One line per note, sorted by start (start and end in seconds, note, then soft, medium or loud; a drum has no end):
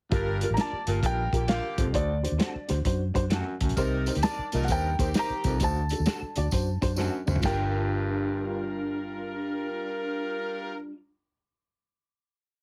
0.11 0.43 G1 medium
0.11 0.47 G2 medium
0.11 0.48 G3 loud
0.11 0.26 F4 medium
0.11 0.48 F4 medium
0.11 0.27 G4 medium
0.11 0.27 A#4 loud
0.11 0.48 A#4 loud
0.11 kick medium
0.11 closed hi-hat medium
0.41 0.49 F4 medium
0.41 0.50 G4 medium
0.41 0.50 A#4 medium
0.41 closed hi-hat medium
0.50 0.56 A1 medium
0.50 0.57 D3 medium
0.50 0.57 A#3 medium
0.50 0.57 G4 medium
0.50 0.58 A#5 medium
0.56 0.69 G3 medium
0.56 0.83 A#3 medium
0.56 0.69 D4 medium
0.56 0.72 F4 medium
0.56 0.70 F4 medium
0.56 0.72 G4 medium
0.56 0.70 A#4 medium
0.56 snare loud
0.56 closed hi-hat medium
0.60 0.83 G4 medium
0.60 0.83 D5 medium
0.60 1.01 A5 medium
0.73 muted fingered electric bass stroke soft
0.86 1.00 G1 medium
0.86 1.00 A#2 medium
0.86 0.94 F4 medium
0.86 0.95 G4 medium
0.86 0.96 A#4 medium
0.86 closed hi-hat medium
0.90 1.01 G3 medium
0.90 1.01 F4 medium
0.90 1.01 A#4 medium
1.02 1.28 A#1 medium
1.02 1.26 G2 medium
1.02 1.29 G3 medium
1.02 1.18 F4 medium
1.02 1.18 G4 medium
1.02 1.19 A#4 medium
1.02 1.51 G5 loud
1.02 kick medium
1.02 closed hi-hat medium
1.06 1.29 F4 medium
1.06 1.29 A#4 medium
1.32 1.58 A#1 medium
1.32 1.46 D3 medium
1.32 1.46 A#3 medium
1.32 1.40 F4 medium
1.32 1.41 G4 medium
1.32 1.46 G4 medium
1.32 1.41 A#4 loud
1.32 kick medium
1.32 closed hi-hat medium
1.47 1.85 D3 loud
1.47 1.60 G3 medium
1.47 1.85 A#3 medium
1.47 1.60 D4 medium
1.47 1.63 F4 medium
1.47 1.61 F4 medium
1.47 1.63 G4 medium
1.47 1.85 G4 loud
1.47 1.61 A#4 medium
1.47 1.64 A#4 medium
1.47 1.95 F5 medium
1.47 snare loud
1.47 closed hi-hat medium
1.77 1.85 G1 medium
1.77 1.91 F2 medium
1.77 1.86 F4 medium
1.77 1.86 G4 medium
1.77 1.86 C5 medium
1.77 kick medium
1.77 closed hi-hat medium
1.86 1.93 C2 medium
1.92 2.26 D2 loud
1.92 2.18 D2 medium
1.92 2.08 D4 medium
1.92 2.09 F#4 medium
1.92 2.09 C5 medium
1.92 2.66 D5 medium
1.92 kick medium
1.92 closed hi-hat medium
2.22 2.31 D4 medium
2.22 2.31 F#4 medium
2.22 2.32 C5 medium
2.22 closed hi-hat medium
2.32 2.38 D#2 medium
2.37 2.51 A3 medium
2.37 2.52 C4 medium
2.37 2.54 D4 medium
2.37 2.54 F#4 medium
2.37 2.52 F#4 medium
2.37 2.52 A4 medium
2.37 2.54 C5 medium
2.37 snare loud
2.37 closed hi-hat medium
2.55 muted fingered electric bass stroke soft
2.68 2.83 D2 medium
2.68 2.77 D4 medium
2.68 2.77 F#4 medium
2.68 2.78 C5 medium
2.68 snare soft
2.68 closed hi-hat medium
2.85 3.10 F#2 medium
2.85 3.00 D4 medium
2.85 3.01 F#4 medium
2.85 3.01 C5 medium
2.85 kick medium
2.85 closed hi-hat medium
3.14 3.41 F#2 medium
3.14 3.23 D4 loud
3.14 3.23 F#4 medium
3.14 3.23 C5 loud
3.14 kick medium
3.14 closed hi-hat medium
3.30 3.55 F#2 medium
3.30 3.43 A3 medium
3.30 3.43 C4 medium
3.30 3.43 F#4 medium
3.30 3.43 A4 medium
3.30 3.60 F#5 medium
3.30 snare loud
3.30 closed hi-hat medium
3.60 3.67 D2 medium
3.60 3.74 F#2 medium
3.60 4.05 A5 medium
3.60 kick medium
3.60 closed hi-hat medium
3.69 3.76 A#1 medium
3.69 closed hi-hat soft
3.76 4.08 C2 medium
3.76 4.13 C3 medium
3.76 4.13 G3 medium
3.76 3.92 D#4 loud
3.76 4.12 D#4 loud
3.76 4.12 A#4 loud
3.76 3.92 A#4 medium
3.76 3.93 C5 loud
3.76 kick medium
3.76 closed hi-hat medium
3.76 tambourine medium
4.06 4.14 D#4 medium
4.06 4.15 A#4 medium
4.06 4.15 C5 medium
4.06 closed hi-hat medium
4.06 tambourine medium
4.14 4.22 D2 medium
4.14 4.21 D#3 medium
4.14 4.21 C4 medium
4.14 4.21 G4 medium
4.14 closed hi-hat soft
4.22 4.34 G3 medium
4.22 4.35 C4 medium
4.22 4.47 D4 medium
4.22 4.37 D#4 medium
4.22 4.35 D#4 medium
4.22 4.35 A#4 medium
4.22 4.38 A#4 medium
4.22 4.47 A#4 medium
4.22 4.47 D5 loud
4.22 4.39 D5 medium
4.22 4.65 A5 medium
4.22 snare loud
4.22 closed hi-hat medium
4.22 tambourine medium
4.39 muted fingered electric bass stroke soft
4.52 4.66 C2 medium
4.52 4.66 A#2 medium
4.52 4.66 G3 medium
4.52 4.61 D#4 medium
4.52 4.66 D#4 medium
4.52 4.61 A#4 medium
4.52 4.66 A#4 loud
4.52 4.61 D#5 medium
4.52 snare soft
4.52 closed hi-hat medium
4.52 tambourine medium
4.62 4.69 F#5 medium
4.62 snare soft
4.68 4.94 D#2 medium
4.68 4.93 G2 medium
4.68 4.93 G3 medium
4.68 4.84 D#4 medium
4.68 4.93 D#4 medium
4.68 4.84 A#4 medium
4.68 4.93 A#4 medium
4.68 4.85 C5 medium
4.68 5.17 G5 medium
4.68 kick medium
4.68 closed hi-hat medium
4.68 tambourine medium
4.99 5.12 D#2 medium
4.99 5.12 D#3 medium
4.99 5.12 C4 medium
4.99 5.06 D#4 medium
4.99 5.11 G4 medium
4.99 5.07 A#4 medium
4.99 5.07 C5 loud
4.99 kick medium
4.99 closed hi-hat medium
4.99 tambourine soft
5.14 5.51 D#3 loud
5.14 5.27 G3 medium
5.14 5.27 C4 medium
5.14 5.50 C4 medium
5.14 5.30 D#4 medium
5.14 5.27 D#4 medium
5.14 5.50 G4 loud
5.14 5.30 A#4 medium
5.14 5.27 A#4 medium
5.14 5.30 C5 medium
5.14 snare loud
5.14 closed hi-hat medium
5.14 tambourine medium
5.19 5.59 A#5 loud
5.30 muted fingered electric bass stroke soft
5.44 5.58 C2 medium
5.44 5.57 F2 medium
5.44 5.52 D#4 medium
5.44 5.53 A#4 medium
5.44 5.53 C5 medium
5.44 kick medium
5.44 closed hi-hat medium
5.44 tambourine medium
5.60 5.92 D2 medium
5.60 5.85 D2 medium
5.60 5.76 D4 medium
5.60 5.76 F#4 medium
5.60 5.77 C5 medium
5.60 kick medium
5.60 closed hi-hat medium
5.60 tambourine medium
5.64 6.95 A5 medium
5.89 5.99 D4 medium
5.89 5.99 F#4 medium
5.89 5.99 A4 medium
5.89 closed hi-hat medium
5.89 tambourine medium
6.00 6.05 D#2 medium
6.06 6.18 A3 medium
6.06 6.18 C4 medium
6.06 6.21 D4 medium
6.06 6.21 F#4 medium
6.06 6.19 F#4 medium
6.06 6.19 A4 medium
6.06 6.22 A4 medium
6.06 snare loud
6.06 closed hi-hat medium
6.06 tambourine medium
6.22 muted fingered electric bass stroke soft
6.36 6.50 D2 medium
6.36 6.44 D4 medium
6.36 6.44 F#4 medium
6.36 6.45 D5 medium
6.36 closed hi-hat medium
6.36 tambourine medium
6.51 6.77 F#2 medium
6.51 6.67 D4 medium
6.51 6.67 F#4 medium
6.51 6.68 C5 medium
6.51 kick medium
6.51 closed hi-hat medium
6.51 tambourine medium
6.81 7.08 F#2 medium
6.81 6.89 D4 loud
6.81 6.90 F#4 medium
6.81 6.90 C5 loud
6.81 kick medium
6.81 closed hi-hat medium
6.81 tambourine medium
6.96 7.21 F#2 medium
6.96 7.10 A3 medium
6.96 7.10 C4 medium
6.96 7.12 D4 medium
6.96 7.12 F#4 medium
6.96 7.10 F#4 medium
6.96 7.10 A4 medium
6.96 7.13 C5 loud
6.96 snare medium
6.96 tambourine medium
7.26 7.34 D2 medium
7.26 7.40 F#2 medium
7.26 7.35 D4 medium
7.26 7.35 F#4 medium
7.26 7.36 C5 medium
7.26 mid tom medium
7.26 tambourine medium
7.36 7.42 F#1 medium
7.36 10.67 F4 medium
7.36 floor tom medium
7.42 10.72 G1 medium
7.42 8.76 G2 medium
7.42 10.92 G3 medium
7.42 10.73 G3 medium
7.42 10.93 D4 medium
7.42 10.73 F4 medium
7.42 10.95 F4 medium
7.42 10.71 G4 medium
7.42 10.74 A#4 medium
7.42 10.73 G5 medium
7.42 kick medium
7.42 snare medium
7.42 ride bell medium
7.42 tambourine medium
7.46 10.74 A#4 medium
7.46 10.97 A#4 medium